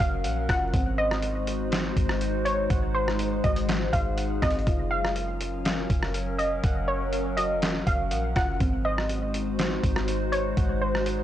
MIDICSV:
0, 0, Header, 1, 6, 480
1, 0, Start_track
1, 0, Tempo, 491803
1, 718, Time_signature, 4, 2, 24, 8
1, 10966, End_track
2, 0, Start_track
2, 0, Title_t, "Synth pluck"
2, 0, Program_c, 0, 84
2, 0, Note_on_c, 0, 77, 78
2, 449, Note_off_c, 0, 77, 0
2, 478, Note_on_c, 0, 78, 79
2, 706, Note_off_c, 0, 78, 0
2, 957, Note_on_c, 0, 75, 94
2, 2359, Note_off_c, 0, 75, 0
2, 2393, Note_on_c, 0, 73, 80
2, 2623, Note_off_c, 0, 73, 0
2, 2875, Note_on_c, 0, 72, 87
2, 3327, Note_off_c, 0, 72, 0
2, 3357, Note_on_c, 0, 75, 77
2, 3809, Note_off_c, 0, 75, 0
2, 3834, Note_on_c, 0, 77, 93
2, 4287, Note_off_c, 0, 77, 0
2, 4315, Note_on_c, 0, 75, 81
2, 4544, Note_off_c, 0, 75, 0
2, 4789, Note_on_c, 0, 77, 90
2, 6195, Note_off_c, 0, 77, 0
2, 6232, Note_on_c, 0, 75, 79
2, 6463, Note_off_c, 0, 75, 0
2, 6713, Note_on_c, 0, 73, 86
2, 7167, Note_off_c, 0, 73, 0
2, 7191, Note_on_c, 0, 75, 77
2, 7646, Note_off_c, 0, 75, 0
2, 7678, Note_on_c, 0, 77, 81
2, 8129, Note_off_c, 0, 77, 0
2, 8158, Note_on_c, 0, 78, 79
2, 8386, Note_off_c, 0, 78, 0
2, 8637, Note_on_c, 0, 75, 90
2, 10038, Note_off_c, 0, 75, 0
2, 10073, Note_on_c, 0, 73, 82
2, 10304, Note_off_c, 0, 73, 0
2, 10555, Note_on_c, 0, 72, 86
2, 10966, Note_off_c, 0, 72, 0
2, 10966, End_track
3, 0, Start_track
3, 0, Title_t, "Synth keys"
3, 0, Program_c, 1, 88
3, 0, Note_on_c, 1, 66, 78
3, 0, Note_on_c, 1, 77, 78
3, 0, Note_on_c, 1, 78, 82
3, 224, Note_off_c, 1, 78, 0
3, 236, Note_on_c, 1, 78, 88
3, 478, Note_on_c, 1, 65, 91
3, 717, Note_off_c, 1, 78, 0
3, 717, Note_on_c, 1, 60, 81
3, 718, Note_off_c, 1, 65, 0
3, 718, Note_off_c, 1, 66, 0
3, 719, Note_off_c, 1, 77, 0
3, 954, Note_on_c, 1, 72, 82
3, 1664, Note_off_c, 1, 72, 0
3, 1675, Note_on_c, 1, 72, 82
3, 2157, Note_off_c, 1, 60, 0
3, 2383, Note_off_c, 1, 72, 0
3, 2394, Note_on_c, 1, 72, 85
3, 2634, Note_on_c, 1, 78, 82
3, 3104, Note_off_c, 1, 72, 0
3, 3116, Note_on_c, 1, 72, 80
3, 3356, Note_on_c, 1, 66, 85
3, 3830, Note_off_c, 1, 72, 0
3, 3842, Note_on_c, 1, 72, 84
3, 4059, Note_off_c, 1, 78, 0
3, 4070, Note_on_c, 1, 78, 82
3, 4311, Note_on_c, 1, 60, 83
3, 4554, Note_off_c, 1, 60, 0
3, 4554, Note_off_c, 1, 78, 0
3, 4557, Note_off_c, 1, 66, 0
3, 4560, Note_off_c, 1, 72, 0
3, 4560, Note_on_c, 1, 65, 90
3, 4798, Note_on_c, 1, 77, 83
3, 5503, Note_off_c, 1, 77, 0
3, 5515, Note_on_c, 1, 77, 83
3, 5999, Note_off_c, 1, 65, 0
3, 6229, Note_off_c, 1, 77, 0
3, 6241, Note_on_c, 1, 77, 83
3, 6481, Note_on_c, 1, 78, 85
3, 6946, Note_off_c, 1, 77, 0
3, 6958, Note_on_c, 1, 77, 84
3, 7198, Note_on_c, 1, 66, 78
3, 7668, Note_off_c, 1, 77, 0
3, 7680, Note_on_c, 1, 77, 78
3, 7904, Note_off_c, 1, 78, 0
3, 7916, Note_on_c, 1, 78, 86
3, 8158, Note_on_c, 1, 65, 87
3, 8396, Note_on_c, 1, 60, 81
3, 8397, Note_off_c, 1, 78, 0
3, 8398, Note_off_c, 1, 65, 0
3, 8398, Note_off_c, 1, 66, 0
3, 8399, Note_off_c, 1, 77, 0
3, 8635, Note_on_c, 1, 72, 80
3, 9344, Note_off_c, 1, 72, 0
3, 9356, Note_on_c, 1, 72, 83
3, 9837, Note_off_c, 1, 60, 0
3, 10064, Note_off_c, 1, 72, 0
3, 10075, Note_on_c, 1, 72, 78
3, 10316, Note_on_c, 1, 78, 82
3, 10784, Note_off_c, 1, 72, 0
3, 10796, Note_on_c, 1, 72, 82
3, 10966, Note_off_c, 1, 72, 0
3, 10966, Note_off_c, 1, 78, 0
3, 10966, End_track
4, 0, Start_track
4, 0, Title_t, "Ambient pad"
4, 0, Program_c, 2, 92
4, 0, Note_on_c, 2, 54, 81
4, 0, Note_on_c, 2, 61, 75
4, 0, Note_on_c, 2, 70, 89
4, 680, Note_off_c, 2, 54, 0
4, 680, Note_off_c, 2, 61, 0
4, 680, Note_off_c, 2, 70, 0
4, 718, Note_on_c, 2, 56, 84
4, 718, Note_on_c, 2, 72, 92
4, 719, Note_on_c, 2, 63, 72
4, 719, Note_on_c, 2, 66, 71
4, 2619, Note_off_c, 2, 66, 0
4, 2638, Note_on_c, 2, 68, 75
4, 4519, Note_off_c, 2, 56, 0
4, 4520, Note_off_c, 2, 63, 0
4, 4520, Note_off_c, 2, 72, 0
4, 4539, Note_off_c, 2, 68, 0
4, 4557, Note_on_c, 2, 54, 85
4, 4557, Note_on_c, 2, 61, 75
4, 4557, Note_on_c, 2, 70, 87
4, 8359, Note_off_c, 2, 54, 0
4, 8359, Note_off_c, 2, 61, 0
4, 8359, Note_off_c, 2, 70, 0
4, 8398, Note_on_c, 2, 56, 81
4, 8398, Note_on_c, 2, 63, 77
4, 8398, Note_on_c, 2, 66, 74
4, 8398, Note_on_c, 2, 72, 91
4, 10966, Note_off_c, 2, 56, 0
4, 10966, Note_off_c, 2, 63, 0
4, 10966, Note_off_c, 2, 66, 0
4, 10966, Note_off_c, 2, 72, 0
4, 10966, End_track
5, 0, Start_track
5, 0, Title_t, "808-style bass"
5, 0, Program_c, 3, 38
5, 0, Note_on_c, 3, 30, 103
5, 238, Note_on_c, 3, 34, 99
5, 252, Note_off_c, 3, 30, 0
5, 466, Note_off_c, 3, 34, 0
5, 479, Note_on_c, 3, 30, 104
5, 709, Note_off_c, 3, 30, 0
5, 718, Note_on_c, 3, 32, 115
5, 1879, Note_off_c, 3, 32, 0
5, 1919, Note_on_c, 3, 32, 97
5, 2610, Note_off_c, 3, 32, 0
5, 2638, Note_on_c, 3, 32, 113
5, 3329, Note_off_c, 3, 32, 0
5, 3360, Note_on_c, 3, 32, 108
5, 3820, Note_off_c, 3, 32, 0
5, 3838, Note_on_c, 3, 32, 99
5, 4299, Note_off_c, 3, 32, 0
5, 4319, Note_on_c, 3, 32, 104
5, 4549, Note_off_c, 3, 32, 0
5, 4558, Note_on_c, 3, 30, 117
5, 5719, Note_off_c, 3, 30, 0
5, 5758, Note_on_c, 3, 30, 101
5, 6449, Note_off_c, 3, 30, 0
5, 6478, Note_on_c, 3, 30, 112
5, 7639, Note_off_c, 3, 30, 0
5, 7678, Note_on_c, 3, 30, 102
5, 7918, Note_on_c, 3, 34, 100
5, 7933, Note_off_c, 3, 30, 0
5, 8146, Note_off_c, 3, 34, 0
5, 8159, Note_on_c, 3, 30, 107
5, 8389, Note_off_c, 3, 30, 0
5, 8398, Note_on_c, 3, 32, 116
5, 9559, Note_off_c, 3, 32, 0
5, 9599, Note_on_c, 3, 32, 103
5, 10290, Note_off_c, 3, 32, 0
5, 10318, Note_on_c, 3, 32, 110
5, 10966, Note_off_c, 3, 32, 0
5, 10966, End_track
6, 0, Start_track
6, 0, Title_t, "Drums"
6, 0, Note_on_c, 9, 36, 89
6, 0, Note_on_c, 9, 42, 79
6, 96, Note_off_c, 9, 36, 0
6, 97, Note_off_c, 9, 42, 0
6, 237, Note_on_c, 9, 42, 86
6, 334, Note_off_c, 9, 42, 0
6, 478, Note_on_c, 9, 42, 58
6, 480, Note_on_c, 9, 36, 91
6, 484, Note_on_c, 9, 37, 95
6, 576, Note_off_c, 9, 42, 0
6, 577, Note_off_c, 9, 36, 0
6, 582, Note_off_c, 9, 37, 0
6, 718, Note_on_c, 9, 42, 79
6, 719, Note_on_c, 9, 36, 107
6, 815, Note_off_c, 9, 42, 0
6, 816, Note_off_c, 9, 36, 0
6, 1086, Note_on_c, 9, 37, 100
6, 1184, Note_off_c, 9, 37, 0
6, 1195, Note_on_c, 9, 42, 70
6, 1293, Note_off_c, 9, 42, 0
6, 1437, Note_on_c, 9, 42, 79
6, 1535, Note_off_c, 9, 42, 0
6, 1679, Note_on_c, 9, 42, 71
6, 1686, Note_on_c, 9, 38, 116
6, 1777, Note_off_c, 9, 42, 0
6, 1783, Note_off_c, 9, 38, 0
6, 1919, Note_on_c, 9, 36, 84
6, 1920, Note_on_c, 9, 42, 77
6, 2016, Note_off_c, 9, 36, 0
6, 2017, Note_off_c, 9, 42, 0
6, 2043, Note_on_c, 9, 37, 111
6, 2140, Note_off_c, 9, 37, 0
6, 2157, Note_on_c, 9, 42, 88
6, 2254, Note_off_c, 9, 42, 0
6, 2398, Note_on_c, 9, 42, 56
6, 2496, Note_off_c, 9, 42, 0
6, 2637, Note_on_c, 9, 42, 78
6, 2638, Note_on_c, 9, 36, 112
6, 2735, Note_off_c, 9, 42, 0
6, 2736, Note_off_c, 9, 36, 0
6, 3006, Note_on_c, 9, 37, 95
6, 3103, Note_off_c, 9, 37, 0
6, 3115, Note_on_c, 9, 42, 71
6, 3212, Note_off_c, 9, 42, 0
6, 3357, Note_on_c, 9, 42, 50
6, 3359, Note_on_c, 9, 36, 91
6, 3455, Note_off_c, 9, 42, 0
6, 3457, Note_off_c, 9, 36, 0
6, 3478, Note_on_c, 9, 42, 84
6, 3575, Note_off_c, 9, 42, 0
6, 3598, Note_on_c, 9, 42, 69
6, 3605, Note_on_c, 9, 38, 116
6, 3696, Note_off_c, 9, 42, 0
6, 3702, Note_off_c, 9, 38, 0
6, 3838, Note_on_c, 9, 36, 90
6, 3839, Note_on_c, 9, 42, 79
6, 3935, Note_off_c, 9, 36, 0
6, 3936, Note_off_c, 9, 42, 0
6, 4076, Note_on_c, 9, 42, 89
6, 4173, Note_off_c, 9, 42, 0
6, 4317, Note_on_c, 9, 42, 59
6, 4319, Note_on_c, 9, 36, 89
6, 4323, Note_on_c, 9, 37, 93
6, 4397, Note_off_c, 9, 42, 0
6, 4397, Note_on_c, 9, 42, 47
6, 4416, Note_off_c, 9, 36, 0
6, 4420, Note_off_c, 9, 37, 0
6, 4477, Note_off_c, 9, 42, 0
6, 4477, Note_on_c, 9, 42, 36
6, 4556, Note_off_c, 9, 42, 0
6, 4556, Note_on_c, 9, 42, 75
6, 4557, Note_on_c, 9, 36, 115
6, 4654, Note_off_c, 9, 42, 0
6, 4655, Note_off_c, 9, 36, 0
6, 4925, Note_on_c, 9, 37, 97
6, 5022, Note_off_c, 9, 37, 0
6, 5034, Note_on_c, 9, 42, 69
6, 5132, Note_off_c, 9, 42, 0
6, 5276, Note_on_c, 9, 42, 81
6, 5374, Note_off_c, 9, 42, 0
6, 5518, Note_on_c, 9, 42, 69
6, 5524, Note_on_c, 9, 38, 117
6, 5615, Note_off_c, 9, 42, 0
6, 5622, Note_off_c, 9, 38, 0
6, 5758, Note_on_c, 9, 36, 86
6, 5758, Note_on_c, 9, 42, 75
6, 5855, Note_off_c, 9, 36, 0
6, 5856, Note_off_c, 9, 42, 0
6, 5882, Note_on_c, 9, 37, 109
6, 5979, Note_off_c, 9, 37, 0
6, 5996, Note_on_c, 9, 42, 92
6, 6093, Note_off_c, 9, 42, 0
6, 6237, Note_on_c, 9, 42, 58
6, 6335, Note_off_c, 9, 42, 0
6, 6476, Note_on_c, 9, 42, 75
6, 6478, Note_on_c, 9, 36, 115
6, 6574, Note_off_c, 9, 42, 0
6, 6575, Note_off_c, 9, 36, 0
6, 6955, Note_on_c, 9, 42, 69
6, 7052, Note_off_c, 9, 42, 0
6, 7197, Note_on_c, 9, 42, 79
6, 7295, Note_off_c, 9, 42, 0
6, 7439, Note_on_c, 9, 42, 66
6, 7445, Note_on_c, 9, 38, 114
6, 7536, Note_off_c, 9, 42, 0
6, 7543, Note_off_c, 9, 38, 0
6, 7679, Note_on_c, 9, 36, 87
6, 7680, Note_on_c, 9, 42, 77
6, 7776, Note_off_c, 9, 36, 0
6, 7777, Note_off_c, 9, 42, 0
6, 7916, Note_on_c, 9, 42, 91
6, 8014, Note_off_c, 9, 42, 0
6, 8158, Note_on_c, 9, 42, 59
6, 8159, Note_on_c, 9, 36, 94
6, 8163, Note_on_c, 9, 37, 87
6, 8255, Note_off_c, 9, 42, 0
6, 8257, Note_off_c, 9, 36, 0
6, 8261, Note_off_c, 9, 37, 0
6, 8398, Note_on_c, 9, 36, 112
6, 8398, Note_on_c, 9, 42, 72
6, 8495, Note_off_c, 9, 42, 0
6, 8496, Note_off_c, 9, 36, 0
6, 8766, Note_on_c, 9, 37, 94
6, 8864, Note_off_c, 9, 37, 0
6, 8876, Note_on_c, 9, 42, 71
6, 8973, Note_off_c, 9, 42, 0
6, 9117, Note_on_c, 9, 42, 77
6, 9215, Note_off_c, 9, 42, 0
6, 9359, Note_on_c, 9, 42, 69
6, 9365, Note_on_c, 9, 38, 115
6, 9456, Note_off_c, 9, 42, 0
6, 9463, Note_off_c, 9, 38, 0
6, 9599, Note_on_c, 9, 36, 87
6, 9599, Note_on_c, 9, 42, 76
6, 9696, Note_off_c, 9, 36, 0
6, 9697, Note_off_c, 9, 42, 0
6, 9722, Note_on_c, 9, 37, 111
6, 9820, Note_off_c, 9, 37, 0
6, 9836, Note_on_c, 9, 42, 92
6, 9934, Note_off_c, 9, 42, 0
6, 10078, Note_on_c, 9, 42, 59
6, 10176, Note_off_c, 9, 42, 0
6, 10318, Note_on_c, 9, 36, 114
6, 10318, Note_on_c, 9, 42, 75
6, 10415, Note_off_c, 9, 42, 0
6, 10416, Note_off_c, 9, 36, 0
6, 10686, Note_on_c, 9, 37, 92
6, 10784, Note_off_c, 9, 37, 0
6, 10795, Note_on_c, 9, 42, 72
6, 10893, Note_off_c, 9, 42, 0
6, 10966, End_track
0, 0, End_of_file